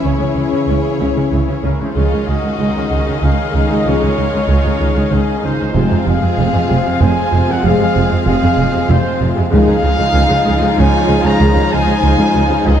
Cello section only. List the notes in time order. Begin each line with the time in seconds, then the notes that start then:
0.05 C#3
0.22 C#3
0.37 C#3
0.53 C#3
0.70 C#3
1.02 C#3
1.18 C#3
1.34 C#3
1.49 C#3
1.65 C#3
1.81 C#3
1.97 C#2
2.13 C#2
2.29 C#2
2.44 C#2
2.60 C#2
2.77 C#2
2.93 C#2
3.09 C#2
3.23 C#2
3.55 C#2
3.71 C#2
3.87 C#2
4.03 C#2
4.19 C#2
4.34 C#2
4.50 C#2
4.66 C#2
4.81 C#2
4.96 C#2
5.12 C#2
5.44 C#2
5.59 C#2
5.75 F2
5.91 F2
6.07 F2
6.22 F2
6.37 F2
6.54 F2
6.70 F2
6.87 F2
7.02 F2
7.34 F2
7.49 F2
7.64 F2
7.81 F2
7.96 F2
8.11 F2
8.27 F2
8.43 F2
8.58 F2
8.75 F2
8.90 F2
9.22 F2
9.37 F2
9.52 C#2
9.68 C#2
9.84 C#2
9.98 C#2
10.14 C#2
10.29 C#2
10.45 C#2
10.61 C#2
10.77 C#2
11.08 C#2
11.24 C#2
11.40 C#2
11.55 C#2
11.71 C#2
11.86 C#2
12.02 C#2
12.18 C#2
12.33 C#2
12.50 C#2
12.64 C#2